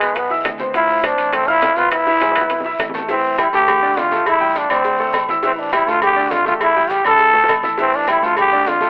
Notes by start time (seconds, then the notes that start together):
Already playing: G#3
0.01 B1 B3 B4 B5, high timbale, short guiro, claves, maracas
0.15 B3, high bongo, high conga, high timbale, long guiro, maracas
0.30 E4 E5 E6, high bongo, high conga, maracas
0.44 D2, high bongo, low bongo, high conga, high timbale, low timbale, short guiro, claves, maracas
0.58 C4 C5 C6, high bongo, high conga, short guiro, maracas
0.73 F3 E4 F4 F5, high bongo, high conga, high timbale, long guiro, maracas
0.89 high conga, maracas
1.03 C4 D4 C5 C6, high bongo, high conga, high timbale, low timbale, short guiro, claves, maracas
1.18 A1, high conga, high timbale, short guiro, maracas
1.32 A3 C4 A4 A5, high bongo, high conga, low conga, high timbale, long guiro, claves, maracas
1.47 E4 F4 F5 F6, high conga, low conga, maracas
1.61 E1, high bongo, low bongo, high conga, high timbale, low timbale, short guiro, maracas
1.76 B3 F4 B4 B5, high conga, short guiro, maracas
1.91 E4, high bongo, high conga, high timbale, long guiro, claves, maracas
2.06 E3 E4 E5, high conga, maracas
2.20 G#3 G#4 G#5, high bongo, high conga, high timbale, low timbale, short guiro, maracas
2.31 high bongo, maracas
2.35 B1 B3 B4 B5, high timbale, short guiro, claves
2.41 high bongo
2.49 low bongo, high conga, high timbale, long guiro, maracas
2.60 low bongo
2.64 E4 E5 E6, high conga, maracas
2.79 A1, low bongo, high conga, high timbale, low timbale, short guiro, claves, maracas
2.90 low bongo
2.94 A3 A4 A5, high conga, short guiro, maracas
2.99 low bongo
3.08 E3 C4 E4 E5, cowbell, high conga, low agogo, long guiro, maracas
3.24 high conga, maracas
3.38 G3 E4 G4 G5, cowbell, high conga, low timbale, low agogo, short guiro, claves, maracas
3.53 D2 A3 G4 A4 A5, high conga, short guiro, maracas
3.68 cowbell, high conga, low conga, low agogo, long guiro, claves, maracas
3.82 D3 D4 D5, high conga, low conga, maracas
3.97 A1 F4, cowbell, high conga, low timbale, low agogo, short guiro, maracas
4.11 A3 A4 A5, cowbell, high conga, short guiro, maracas
4.26 E4, cowbell, high conga, low agogo, long guiro, claves, maracas
4.41 G3 G4 G5, high conga, maracas
4.55 D4, cowbell, high conga, low timbale, low agogo, short guiro, maracas
4.69 D2 D3 C4 D4 D5, cowbell, low agogo, short guiro, claves, maracas
4.84 cowbell, low agogo, long guiro, maracas
4.99 A3 A4 A5, high conga, maracas
5.13 A1, cowbell, high conga, low timbale, low agogo, short guiro, claves, maracas
5.28 E4 E5 E6, high conga, short guiro, maracas
5.43 E3 C4 E4 E5, cowbell, high conga, low agogo, long guiro, maracas
5.55 D4 E4, high conga, maracas
5.72 G3 E4 G4 G5, cowbell, high conga, low timbale, low agogo, short guiro, claves, maracas
5.87 D2 A3 F4 A4 A5, short guiro, maracas
6.02 G4, cowbell, high conga, low conga, low agogo, long guiro, claves, maracas
6.16 D3 D4 D5, high conga, maracas
6.31 A1 F4, cowbell, high conga, low timbale, low agogo, short guiro, maracas
6.45 A3 F4 A4 A5, cowbell, high conga, short guiro, maracas
6.60 E4, cowbell, high conga, low agogo, long guiro, claves, maracas
6.76 G3 G4 G5, maracas
6.90 G4, cowbell, high conga, low timbale, low agogo, short guiro, maracas
7.04 D2 D3 D4 A4 D5, cowbell, low agogo, short guiro, claves, maracas
7.18 cowbell, high conga, low agogo, long guiro, maracas
7.33 A3 A4 A5, high bongo, maracas
7.44 high bongo
7.48 A1, cowbell, high conga, low timbale, low agogo, short guiro, claves, maracas
7.63 E4 E5 E6, low bongo, high conga, short guiro, maracas
7.78 E3 C4 E4 E5, cowbell, low agogo, long guiro, maracas
7.93 D4, high conga, maracas
8.07 G3 E4 G4 G5, cowbell, high conga, low timbale, low agogo, short guiro, claves, maracas
8.22 D2 A3 F4 A4 A5, short guiro, maracas
8.37 G4, cowbell, high conga, low conga, low agogo, long guiro, claves, maracas
8.52 D3 D4 D5, high conga, low conga, maracas
8.66 A1 F4, cowbell, high conga, low timbale, low agogo, short guiro, maracas
8.81 A3 A4 A5, cowbell, high conga, short guiro, maracas